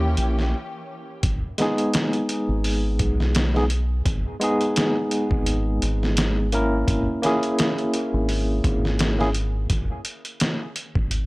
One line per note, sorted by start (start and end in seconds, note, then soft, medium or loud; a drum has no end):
0.00 0.14 D#2 medium
0.00 1.20 E3 medium
0.00 0.52 A#3 medium
0.00 0.53 C#4 medium
0.00 1.20 C#4 medium
0.00 0.54 E4 medium
0.00 0.54 G4 loud
0.00 1.20 G4 medium
0.17 0.53 A#1 medium
0.17 closed hi-hat medium
0.39 snare soft
1.23 1.41 G#1 medium
1.23 kick loud
1.23 closed hi-hat medium
1.58 3.50 G#3 medium
1.58 3.50 B3 medium
1.58 3.51 D#4 medium
1.58 3.52 G#4 medium
1.58 snare soft
1.58 closed hi-hat medium
1.78 closed hi-hat soft
1.94 snare loud
1.94 closed hi-hat medium
2.13 closed hi-hat soft
2.29 closed hi-hat medium
2.49 3.00 G#1 medium
2.64 open hi-hat medium
2.99 4.03 B1 medium
2.99 kick medium
2.99 closed hi-hat medium
3.20 snare soft
3.35 snare loud
3.35 closed hi-hat medium
3.55 3.63 G#3 medium
3.55 3.64 B3 medium
3.55 3.64 D#4 medium
3.55 3.64 G#4 medium
3.55 snare soft
3.70 closed hi-hat medium
4.05 4.23 G#1 medium
4.05 kick loud
4.05 closed hi-hat medium
4.39 6.48 G#3 medium
4.39 6.49 B3 medium
4.39 6.50 D#4 medium
4.39 closed hi-hat medium
4.44 6.50 G#4 medium
4.61 closed hi-hat soft
4.76 snare loud
4.76 closed hi-hat medium
5.11 closed hi-hat medium
5.31 5.79 G#1 medium
5.31 kick loud
5.46 closed hi-hat medium
5.82 6.85 G#1 medium
5.82 closed hi-hat medium
6.03 snare soft
6.17 snare loud
6.17 closed hi-hat medium
6.52 7.19 A#3 medium
6.52 7.20 C#4 medium
6.52 7.20 E4 medium
6.52 7.21 A#4 medium
6.52 closed hi-hat medium
6.88 7.05 G#1 medium
6.88 kick loud
6.88 closed hi-hat medium
7.22 9.14 A#3 medium
7.22 9.15 C#4 medium
7.22 9.15 E4 medium
7.22 9.16 G#4 medium
7.22 snare soft
7.22 closed hi-hat medium
7.43 closed hi-hat soft
7.59 snare loud
7.59 closed hi-hat medium
7.78 closed hi-hat soft
7.94 closed hi-hat medium
8.14 8.62 G#1 medium
8.29 open hi-hat medium
8.64 9.67 G#1 medium
8.64 kick medium
8.64 closed hi-hat medium
8.85 snare soft
8.99 snare loud
8.99 closed hi-hat medium
9.19 9.28 A#3 medium
9.19 9.28 C#4 medium
9.19 9.28 E4 medium
9.19 9.29 G#4 medium
9.19 snare soft
9.35 closed hi-hat medium
9.70 9.88 G#1 loud
9.70 kick loud
9.70 closed hi-hat medium
10.05 closed hi-hat medium
10.25 closed hi-hat soft
10.40 snare loud
10.40 closed hi-hat medium
10.76 closed hi-hat medium
10.95 11.26 G#1 medium
10.95 kick loud
11.11 closed hi-hat medium